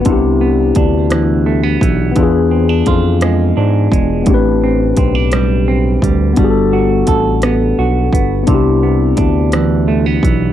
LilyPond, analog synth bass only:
\new Staff \with { instrumentName = "Analog synth bass" } { \clef bass \time 6/8 \key c \lydian \tempo 4. = 57 c,4 d,4. b,,8 | e,4 f,4 gis,8 e,,8 | a,,4 b,,4. d,8 | g,,4 a,,4 b,,8 g,,8 |
c,4 d,4. b,,8 | }